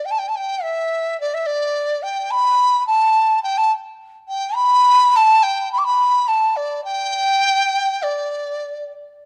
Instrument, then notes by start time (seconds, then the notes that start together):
dizi
0.05 G5
0.11 A5
0.18 G5
0.28 A5
0.35 G5
0.63 E5
1.20 D5
1.34 E5
1.46 D5
2.02 G5
2.31 B5
2.87 A5
3.43 G5
3.57 A5
4.28 G5
4.55 B5
5.16 A5
5.43 G5
5.72 B5
5.78 D6
5.84 B5
6.28 A5
6.56 D5
6.84 G5
8.02 D5